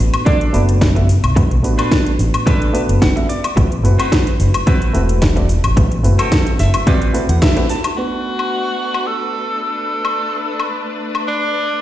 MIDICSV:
0, 0, Header, 1, 8, 480
1, 0, Start_track
1, 0, Tempo, 550459
1, 1192, Time_signature, 4, 2, 24, 8
1, 10304, End_track
2, 0, Start_track
2, 0, Title_t, "Clean electric guitar"
2, 0, Program_c, 0, 27
2, 220, Note_on_c, 0, 62, 86
2, 228, Note_on_c, 0, 69, 66
2, 228, Note_on_c, 0, 74, 93
2, 531, Note_off_c, 0, 62, 0
2, 532, Note_off_c, 0, 69, 0
2, 534, Note_off_c, 0, 74, 0
2, 1551, Note_on_c, 0, 62, 85
2, 1557, Note_on_c, 0, 69, 65
2, 1559, Note_on_c, 0, 71, 89
2, 1852, Note_off_c, 0, 62, 0
2, 1854, Note_off_c, 0, 69, 0
2, 1856, Note_off_c, 0, 71, 0
2, 2143, Note_on_c, 0, 62, 77
2, 2151, Note_on_c, 0, 69, 70
2, 2151, Note_on_c, 0, 71, 98
2, 2452, Note_off_c, 0, 62, 0
2, 2454, Note_off_c, 0, 69, 0
2, 2455, Note_off_c, 0, 71, 0
2, 2630, Note_on_c, 0, 78, 72
2, 2854, Note_off_c, 0, 78, 0
2, 2871, Note_on_c, 0, 74, 62
2, 3093, Note_off_c, 0, 74, 0
2, 3475, Note_on_c, 0, 60, 80
2, 3478, Note_on_c, 0, 66, 75
2, 3484, Note_on_c, 0, 71, 77
2, 3774, Note_off_c, 0, 60, 0
2, 3776, Note_off_c, 0, 66, 0
2, 3777, Note_off_c, 0, 71, 0
2, 4068, Note_on_c, 0, 60, 79
2, 4074, Note_on_c, 0, 66, 70
2, 4074, Note_on_c, 0, 71, 95
2, 4374, Note_off_c, 0, 60, 0
2, 4375, Note_off_c, 0, 66, 0
2, 4377, Note_off_c, 0, 71, 0
2, 5395, Note_on_c, 0, 60, 84
2, 5397, Note_on_c, 0, 66, 81
2, 5402, Note_on_c, 0, 69, 83
2, 5693, Note_off_c, 0, 60, 0
2, 5695, Note_off_c, 0, 66, 0
2, 5696, Note_off_c, 0, 69, 0
2, 5752, Note_on_c, 0, 76, 72
2, 5975, Note_off_c, 0, 76, 0
2, 5988, Note_on_c, 0, 60, 87
2, 5993, Note_on_c, 0, 66, 79
2, 5996, Note_on_c, 0, 71, 97
2, 5997, Note_on_c, 0, 74, 73
2, 6295, Note_off_c, 0, 60, 0
2, 6296, Note_off_c, 0, 66, 0
2, 6298, Note_off_c, 0, 71, 0
2, 6334, Note_off_c, 0, 74, 0
2, 6360, Note_on_c, 0, 78, 67
2, 6465, Note_off_c, 0, 78, 0
2, 6470, Note_on_c, 0, 76, 74
2, 6694, Note_off_c, 0, 76, 0
2, 6716, Note_on_c, 0, 81, 61
2, 6936, Note_off_c, 0, 81, 0
2, 10304, End_track
3, 0, Start_track
3, 0, Title_t, "Tenor saxophone"
3, 0, Program_c, 1, 66
3, 6945, Note_on_c, 1, 66, 90
3, 7912, Note_on_c, 1, 69, 100
3, 7925, Note_off_c, 1, 66, 0
3, 8389, Note_off_c, 1, 69, 0
3, 8394, Note_on_c, 1, 69, 89
3, 9318, Note_off_c, 1, 69, 0
3, 9834, Note_on_c, 1, 62, 109
3, 10304, Note_off_c, 1, 62, 0
3, 10304, End_track
4, 0, Start_track
4, 0, Title_t, "Reed electric piano"
4, 0, Program_c, 2, 4
4, 0, Note_on_c, 2, 57, 81
4, 0, Note_on_c, 2, 59, 74
4, 0, Note_on_c, 2, 62, 72
4, 0, Note_on_c, 2, 66, 76
4, 0, Note_on_c, 2, 71, 92
4, 437, Note_off_c, 2, 57, 0
4, 439, Note_off_c, 2, 59, 0
4, 442, Note_off_c, 2, 62, 0
4, 443, Note_off_c, 2, 66, 0
4, 446, Note_off_c, 2, 71, 0
4, 464, Note_on_c, 2, 57, 91
4, 467, Note_on_c, 2, 59, 82
4, 469, Note_on_c, 2, 62, 82
4, 471, Note_on_c, 2, 66, 81
4, 473, Note_on_c, 2, 71, 98
4, 805, Note_off_c, 2, 57, 0
4, 807, Note_off_c, 2, 59, 0
4, 808, Note_off_c, 2, 62, 0
4, 809, Note_off_c, 2, 66, 0
4, 810, Note_off_c, 2, 71, 0
4, 833, Note_on_c, 2, 57, 76
4, 835, Note_on_c, 2, 59, 67
4, 837, Note_on_c, 2, 62, 69
4, 839, Note_on_c, 2, 66, 67
4, 842, Note_on_c, 2, 76, 83
4, 929, Note_off_c, 2, 57, 0
4, 930, Note_off_c, 2, 59, 0
4, 931, Note_off_c, 2, 62, 0
4, 932, Note_off_c, 2, 66, 0
4, 934, Note_off_c, 2, 76, 0
4, 1189, Note_on_c, 2, 57, 80
4, 1190, Note_on_c, 2, 59, 70
4, 1192, Note_on_c, 2, 62, 71
4, 1194, Note_on_c, 2, 66, 74
4, 1195, Note_on_c, 2, 71, 86
4, 1296, Note_off_c, 2, 57, 0
4, 1297, Note_off_c, 2, 59, 0
4, 1298, Note_off_c, 2, 62, 0
4, 1298, Note_off_c, 2, 66, 0
4, 1299, Note_off_c, 2, 71, 0
4, 1420, Note_on_c, 2, 57, 83
4, 1424, Note_on_c, 2, 59, 79
4, 1428, Note_on_c, 2, 62, 78
4, 1432, Note_on_c, 2, 66, 77
4, 1436, Note_on_c, 2, 71, 89
4, 2359, Note_off_c, 2, 57, 0
4, 2361, Note_off_c, 2, 59, 0
4, 2363, Note_off_c, 2, 62, 0
4, 2365, Note_off_c, 2, 66, 0
4, 2367, Note_off_c, 2, 71, 0
4, 2383, Note_on_c, 2, 57, 94
4, 2387, Note_on_c, 2, 59, 82
4, 2388, Note_on_c, 2, 62, 84
4, 2390, Note_on_c, 2, 66, 79
4, 2393, Note_on_c, 2, 71, 100
4, 2724, Note_off_c, 2, 57, 0
4, 2727, Note_off_c, 2, 59, 0
4, 2727, Note_off_c, 2, 62, 0
4, 2728, Note_off_c, 2, 66, 0
4, 2729, Note_off_c, 2, 71, 0
4, 2756, Note_on_c, 2, 57, 76
4, 2757, Note_on_c, 2, 59, 69
4, 2760, Note_on_c, 2, 62, 72
4, 2761, Note_on_c, 2, 66, 68
4, 2763, Note_on_c, 2, 76, 84
4, 2851, Note_off_c, 2, 57, 0
4, 2851, Note_off_c, 2, 59, 0
4, 2853, Note_off_c, 2, 62, 0
4, 2853, Note_off_c, 2, 66, 0
4, 2854, Note_off_c, 2, 76, 0
4, 3105, Note_on_c, 2, 57, 79
4, 3108, Note_on_c, 2, 60, 71
4, 3108, Note_on_c, 2, 64, 73
4, 3112, Note_on_c, 2, 66, 73
4, 3114, Note_on_c, 2, 71, 88
4, 3214, Note_off_c, 2, 57, 0
4, 3216, Note_off_c, 2, 60, 0
4, 3216, Note_off_c, 2, 64, 0
4, 3218, Note_off_c, 2, 66, 0
4, 3219, Note_off_c, 2, 71, 0
4, 3342, Note_on_c, 2, 57, 84
4, 3347, Note_on_c, 2, 60, 76
4, 3350, Note_on_c, 2, 64, 78
4, 3356, Note_on_c, 2, 66, 78
4, 3360, Note_on_c, 2, 71, 94
4, 4280, Note_off_c, 2, 57, 0
4, 4283, Note_off_c, 2, 60, 0
4, 4284, Note_off_c, 2, 64, 0
4, 4287, Note_off_c, 2, 66, 0
4, 4289, Note_off_c, 2, 71, 0
4, 4305, Note_on_c, 2, 57, 89
4, 4307, Note_on_c, 2, 60, 81
4, 4310, Note_on_c, 2, 64, 84
4, 4310, Note_on_c, 2, 66, 84
4, 4314, Note_on_c, 2, 71, 101
4, 4645, Note_off_c, 2, 57, 0
4, 4646, Note_off_c, 2, 60, 0
4, 4648, Note_off_c, 2, 64, 0
4, 4648, Note_off_c, 2, 66, 0
4, 4650, Note_off_c, 2, 71, 0
4, 4672, Note_on_c, 2, 57, 74
4, 4674, Note_on_c, 2, 60, 68
4, 4676, Note_on_c, 2, 64, 70
4, 4679, Note_on_c, 2, 66, 70
4, 4680, Note_on_c, 2, 74, 82
4, 4769, Note_off_c, 2, 57, 0
4, 4770, Note_off_c, 2, 60, 0
4, 4771, Note_off_c, 2, 64, 0
4, 4773, Note_off_c, 2, 66, 0
4, 4773, Note_off_c, 2, 74, 0
4, 5024, Note_on_c, 2, 57, 82
4, 5026, Note_on_c, 2, 60, 72
4, 5029, Note_on_c, 2, 64, 73
4, 5031, Note_on_c, 2, 66, 69
4, 5032, Note_on_c, 2, 71, 88
4, 5134, Note_off_c, 2, 57, 0
4, 5134, Note_off_c, 2, 60, 0
4, 5136, Note_off_c, 2, 64, 0
4, 5137, Note_off_c, 2, 66, 0
4, 5138, Note_off_c, 2, 71, 0
4, 5258, Note_on_c, 2, 57, 84
4, 5263, Note_on_c, 2, 60, 79
4, 5267, Note_on_c, 2, 64, 80
4, 5271, Note_on_c, 2, 66, 78
4, 5274, Note_on_c, 2, 71, 90
4, 6198, Note_off_c, 2, 57, 0
4, 6201, Note_off_c, 2, 60, 0
4, 6203, Note_off_c, 2, 64, 0
4, 6205, Note_off_c, 2, 66, 0
4, 6206, Note_off_c, 2, 71, 0
4, 6222, Note_on_c, 2, 57, 86
4, 6224, Note_on_c, 2, 60, 83
4, 6227, Note_on_c, 2, 64, 78
4, 6228, Note_on_c, 2, 66, 78
4, 6231, Note_on_c, 2, 71, 97
4, 6564, Note_off_c, 2, 57, 0
4, 6565, Note_off_c, 2, 60, 0
4, 6566, Note_off_c, 2, 64, 0
4, 6567, Note_off_c, 2, 66, 0
4, 6569, Note_off_c, 2, 71, 0
4, 6595, Note_on_c, 2, 57, 86
4, 6597, Note_on_c, 2, 60, 78
4, 6600, Note_on_c, 2, 64, 80
4, 6600, Note_on_c, 2, 66, 78
4, 6606, Note_on_c, 2, 71, 94
4, 6691, Note_off_c, 2, 57, 0
4, 6691, Note_off_c, 2, 60, 0
4, 6693, Note_off_c, 2, 64, 0
4, 6693, Note_off_c, 2, 66, 0
4, 6696, Note_off_c, 2, 71, 0
4, 6944, Note_on_c, 2, 57, 67
4, 6948, Note_on_c, 2, 59, 62
4, 6953, Note_on_c, 2, 62, 60
4, 6959, Note_on_c, 2, 66, 62
4, 6962, Note_on_c, 2, 71, 76
4, 10304, Note_off_c, 2, 57, 0
4, 10304, Note_off_c, 2, 59, 0
4, 10304, Note_off_c, 2, 62, 0
4, 10304, Note_off_c, 2, 66, 0
4, 10304, Note_off_c, 2, 71, 0
4, 10304, End_track
5, 0, Start_track
5, 0, Title_t, "String section"
5, 0, Program_c, 3, 48
5, 6950, Note_on_c, 3, 57, 68
5, 6951, Note_on_c, 3, 62, 64
5, 6951, Note_on_c, 3, 71, 75
5, 10304, Note_off_c, 3, 57, 0
5, 10304, Note_off_c, 3, 62, 0
5, 10304, Note_off_c, 3, 71, 0
5, 10304, End_track
6, 0, Start_track
6, 0, Title_t, "Fingered electric bass"
6, 0, Program_c, 4, 33
6, 471, Note_on_c, 4, 30, 97
6, 1007, Note_off_c, 4, 30, 0
6, 1078, Note_on_c, 4, 35, 78
6, 1151, Note_off_c, 4, 35, 0
6, 1189, Note_on_c, 4, 35, 90
6, 1430, Note_off_c, 4, 35, 0
6, 1430, Note_on_c, 4, 33, 89
6, 1513, Note_off_c, 4, 33, 0
6, 1909, Note_on_c, 4, 33, 86
6, 1993, Note_off_c, 4, 33, 0
6, 2520, Note_on_c, 4, 30, 89
6, 2592, Note_off_c, 4, 30, 0
6, 3113, Note_on_c, 4, 33, 89
6, 3351, Note_off_c, 4, 33, 0
6, 3351, Note_on_c, 4, 30, 92
6, 3434, Note_off_c, 4, 30, 0
6, 3832, Note_on_c, 4, 30, 88
6, 3914, Note_off_c, 4, 30, 0
6, 4312, Note_on_c, 4, 28, 100
6, 4847, Note_off_c, 4, 28, 0
6, 4917, Note_on_c, 4, 33, 80
6, 4991, Note_off_c, 4, 33, 0
6, 5031, Note_on_c, 4, 33, 96
6, 5271, Note_off_c, 4, 33, 0
6, 5271, Note_on_c, 4, 30, 91
6, 5354, Note_off_c, 4, 30, 0
6, 5750, Note_on_c, 4, 30, 88
6, 5833, Note_off_c, 4, 30, 0
6, 6358, Note_on_c, 4, 40, 94
6, 6432, Note_off_c, 4, 40, 0
6, 10304, End_track
7, 0, Start_track
7, 0, Title_t, "Muted clean electric guitar strokes"
7, 831, Note_on_c, 9, 29, 83
7, 918, Note_off_c, 9, 29, 0
7, 946, Note_on_c, 9, 29, 31
7, 1034, Note_off_c, 9, 29, 0
7, 1182, Note_on_c, 9, 29, 100
7, 1269, Note_off_c, 9, 29, 0
7, 1312, Note_on_c, 9, 29, 32
7, 1400, Note_off_c, 9, 29, 0
7, 2754, Note_on_c, 9, 29, 83
7, 2841, Note_off_c, 9, 29, 0
7, 2862, Note_on_c, 9, 29, 30
7, 2949, Note_off_c, 9, 29, 0
7, 3104, Note_on_c, 9, 29, 101
7, 3191, Note_off_c, 9, 29, 0
7, 3234, Note_on_c, 9, 29, 32
7, 3321, Note_off_c, 9, 29, 0
7, 4677, Note_on_c, 9, 29, 89
7, 4764, Note_off_c, 9, 29, 0
7, 4786, Note_on_c, 9, 29, 32
7, 4873, Note_off_c, 9, 29, 0
7, 5027, Note_on_c, 9, 29, 105
7, 5115, Note_off_c, 9, 29, 0
7, 5155, Note_on_c, 9, 29, 33
7, 5242, Note_off_c, 9, 29, 0
7, 6599, Note_on_c, 9, 29, 88
7, 6686, Note_off_c, 9, 29, 0
7, 6707, Note_on_c, 9, 29, 32
7, 6795, Note_off_c, 9, 29, 0
7, 10304, End_track
8, 0, Start_track
8, 0, Title_t, "Drums"
8, 119, Note_on_c, 9, 42, 46
8, 119, Note_on_c, 9, 76, 80
8, 206, Note_off_c, 9, 42, 0
8, 206, Note_off_c, 9, 76, 0
8, 229, Note_on_c, 9, 36, 114
8, 231, Note_on_c, 9, 42, 63
8, 316, Note_off_c, 9, 36, 0
8, 318, Note_off_c, 9, 42, 0
8, 359, Note_on_c, 9, 42, 34
8, 446, Note_off_c, 9, 42, 0
8, 471, Note_on_c, 9, 46, 98
8, 558, Note_off_c, 9, 46, 0
8, 599, Note_on_c, 9, 42, 47
8, 687, Note_off_c, 9, 42, 0
8, 709, Note_on_c, 9, 36, 99
8, 710, Note_on_c, 9, 38, 110
8, 712, Note_on_c, 9, 42, 59
8, 796, Note_off_c, 9, 36, 0
8, 798, Note_off_c, 9, 38, 0
8, 799, Note_off_c, 9, 42, 0
8, 840, Note_on_c, 9, 42, 33
8, 928, Note_off_c, 9, 42, 0
8, 951, Note_on_c, 9, 46, 99
8, 1039, Note_off_c, 9, 46, 0
8, 1079, Note_on_c, 9, 42, 48
8, 1079, Note_on_c, 9, 76, 74
8, 1166, Note_off_c, 9, 42, 0
8, 1166, Note_off_c, 9, 76, 0
8, 1189, Note_on_c, 9, 36, 105
8, 1193, Note_on_c, 9, 42, 63
8, 1276, Note_off_c, 9, 36, 0
8, 1281, Note_off_c, 9, 42, 0
8, 1320, Note_on_c, 9, 42, 36
8, 1407, Note_off_c, 9, 42, 0
8, 1433, Note_on_c, 9, 46, 91
8, 1520, Note_off_c, 9, 46, 0
8, 1559, Note_on_c, 9, 42, 47
8, 1559, Note_on_c, 9, 76, 74
8, 1646, Note_off_c, 9, 42, 0
8, 1646, Note_off_c, 9, 76, 0
8, 1670, Note_on_c, 9, 36, 98
8, 1670, Note_on_c, 9, 38, 109
8, 1671, Note_on_c, 9, 42, 60
8, 1757, Note_off_c, 9, 36, 0
8, 1757, Note_off_c, 9, 38, 0
8, 1759, Note_off_c, 9, 42, 0
8, 1800, Note_on_c, 9, 42, 37
8, 1887, Note_off_c, 9, 42, 0
8, 1912, Note_on_c, 9, 46, 96
8, 1999, Note_off_c, 9, 46, 0
8, 2041, Note_on_c, 9, 42, 49
8, 2041, Note_on_c, 9, 76, 80
8, 2128, Note_off_c, 9, 42, 0
8, 2128, Note_off_c, 9, 76, 0
8, 2150, Note_on_c, 9, 36, 110
8, 2154, Note_on_c, 9, 42, 64
8, 2238, Note_off_c, 9, 36, 0
8, 2241, Note_off_c, 9, 42, 0
8, 2282, Note_on_c, 9, 42, 35
8, 2369, Note_off_c, 9, 42, 0
8, 2395, Note_on_c, 9, 46, 96
8, 2482, Note_off_c, 9, 46, 0
8, 2523, Note_on_c, 9, 42, 51
8, 2610, Note_off_c, 9, 42, 0
8, 2632, Note_on_c, 9, 36, 100
8, 2632, Note_on_c, 9, 38, 107
8, 2634, Note_on_c, 9, 42, 62
8, 2719, Note_off_c, 9, 36, 0
8, 2720, Note_off_c, 9, 38, 0
8, 2721, Note_off_c, 9, 42, 0
8, 2763, Note_on_c, 9, 42, 36
8, 2850, Note_off_c, 9, 42, 0
8, 2874, Note_on_c, 9, 46, 95
8, 2961, Note_off_c, 9, 46, 0
8, 3002, Note_on_c, 9, 42, 52
8, 3002, Note_on_c, 9, 76, 77
8, 3089, Note_off_c, 9, 42, 0
8, 3089, Note_off_c, 9, 76, 0
8, 3112, Note_on_c, 9, 36, 108
8, 3115, Note_on_c, 9, 42, 65
8, 3200, Note_off_c, 9, 36, 0
8, 3203, Note_off_c, 9, 42, 0
8, 3243, Note_on_c, 9, 42, 36
8, 3330, Note_off_c, 9, 42, 0
8, 3355, Note_on_c, 9, 46, 94
8, 3442, Note_off_c, 9, 46, 0
8, 3484, Note_on_c, 9, 42, 51
8, 3484, Note_on_c, 9, 76, 78
8, 3571, Note_off_c, 9, 42, 0
8, 3571, Note_off_c, 9, 76, 0
8, 3592, Note_on_c, 9, 36, 95
8, 3595, Note_on_c, 9, 38, 110
8, 3597, Note_on_c, 9, 42, 64
8, 3680, Note_off_c, 9, 36, 0
8, 3683, Note_off_c, 9, 38, 0
8, 3684, Note_off_c, 9, 42, 0
8, 3723, Note_on_c, 9, 42, 38
8, 3810, Note_off_c, 9, 42, 0
8, 3835, Note_on_c, 9, 46, 99
8, 3922, Note_off_c, 9, 46, 0
8, 3962, Note_on_c, 9, 42, 51
8, 3962, Note_on_c, 9, 76, 84
8, 4049, Note_off_c, 9, 42, 0
8, 4049, Note_off_c, 9, 76, 0
8, 4072, Note_on_c, 9, 36, 112
8, 4072, Note_on_c, 9, 42, 69
8, 4159, Note_off_c, 9, 36, 0
8, 4159, Note_off_c, 9, 42, 0
8, 4201, Note_on_c, 9, 42, 36
8, 4288, Note_off_c, 9, 42, 0
8, 4312, Note_on_c, 9, 46, 94
8, 4399, Note_off_c, 9, 46, 0
8, 4440, Note_on_c, 9, 42, 52
8, 4527, Note_off_c, 9, 42, 0
8, 4550, Note_on_c, 9, 38, 111
8, 4551, Note_on_c, 9, 36, 96
8, 4551, Note_on_c, 9, 42, 66
8, 4637, Note_off_c, 9, 38, 0
8, 4638, Note_off_c, 9, 36, 0
8, 4638, Note_off_c, 9, 42, 0
8, 4680, Note_on_c, 9, 42, 34
8, 4767, Note_off_c, 9, 42, 0
8, 4790, Note_on_c, 9, 46, 99
8, 4877, Note_off_c, 9, 46, 0
8, 4918, Note_on_c, 9, 42, 53
8, 4918, Note_on_c, 9, 76, 82
8, 5005, Note_off_c, 9, 42, 0
8, 5005, Note_off_c, 9, 76, 0
8, 5030, Note_on_c, 9, 36, 111
8, 5031, Note_on_c, 9, 42, 66
8, 5117, Note_off_c, 9, 36, 0
8, 5118, Note_off_c, 9, 42, 0
8, 5159, Note_on_c, 9, 42, 37
8, 5246, Note_off_c, 9, 42, 0
8, 5270, Note_on_c, 9, 46, 96
8, 5357, Note_off_c, 9, 46, 0
8, 5398, Note_on_c, 9, 42, 53
8, 5398, Note_on_c, 9, 76, 78
8, 5485, Note_off_c, 9, 42, 0
8, 5485, Note_off_c, 9, 76, 0
8, 5509, Note_on_c, 9, 36, 98
8, 5509, Note_on_c, 9, 38, 111
8, 5510, Note_on_c, 9, 42, 68
8, 5596, Note_off_c, 9, 38, 0
8, 5597, Note_off_c, 9, 36, 0
8, 5597, Note_off_c, 9, 42, 0
8, 5638, Note_on_c, 9, 42, 39
8, 5725, Note_off_c, 9, 42, 0
8, 5749, Note_on_c, 9, 38, 37
8, 5750, Note_on_c, 9, 46, 98
8, 5836, Note_off_c, 9, 38, 0
8, 5837, Note_off_c, 9, 46, 0
8, 5876, Note_on_c, 9, 42, 52
8, 5876, Note_on_c, 9, 76, 86
8, 5963, Note_off_c, 9, 42, 0
8, 5963, Note_off_c, 9, 76, 0
8, 5989, Note_on_c, 9, 36, 115
8, 5990, Note_on_c, 9, 42, 73
8, 6076, Note_off_c, 9, 36, 0
8, 6077, Note_off_c, 9, 42, 0
8, 6118, Note_on_c, 9, 42, 38
8, 6205, Note_off_c, 9, 42, 0
8, 6230, Note_on_c, 9, 46, 95
8, 6317, Note_off_c, 9, 46, 0
8, 6359, Note_on_c, 9, 42, 57
8, 6446, Note_off_c, 9, 42, 0
8, 6469, Note_on_c, 9, 36, 98
8, 6469, Note_on_c, 9, 38, 112
8, 6470, Note_on_c, 9, 42, 67
8, 6556, Note_off_c, 9, 38, 0
8, 6557, Note_off_c, 9, 36, 0
8, 6557, Note_off_c, 9, 42, 0
8, 6597, Note_on_c, 9, 42, 38
8, 6685, Note_off_c, 9, 42, 0
8, 6710, Note_on_c, 9, 46, 95
8, 6797, Note_off_c, 9, 46, 0
8, 6839, Note_on_c, 9, 42, 56
8, 6839, Note_on_c, 9, 76, 81
8, 6926, Note_off_c, 9, 42, 0
8, 6926, Note_off_c, 9, 76, 0
8, 7318, Note_on_c, 9, 76, 64
8, 7405, Note_off_c, 9, 76, 0
8, 7799, Note_on_c, 9, 76, 70
8, 7887, Note_off_c, 9, 76, 0
8, 8761, Note_on_c, 9, 76, 72
8, 8848, Note_off_c, 9, 76, 0
8, 9239, Note_on_c, 9, 76, 66
8, 9326, Note_off_c, 9, 76, 0
8, 9721, Note_on_c, 9, 76, 69
8, 9808, Note_off_c, 9, 76, 0
8, 10304, End_track
0, 0, End_of_file